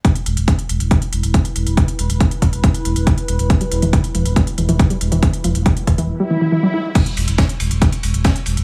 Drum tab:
CC |----------------|----------------|----------------|----------------|
RD |----------------|----------------|----------------|----------------|
HH |xxxxxxxxxxxxxxxx|xxxxxxxxxxxxxxxx|xxxxxxxxxxxxxxxx|xxxxxxxx--------|
SD |----------------|----------------|----------------|----------------|
BD |o---o---o---o---|o---o-o-o---o---|o---o---o---o---|o---o-o---------|

CC |x---------------|
RD |x-xxx-x-xxx-x-x-|
HH |xxoxxxoxxxoxxxox|
SD |----o-------o---|
BD |o---o---o---o---|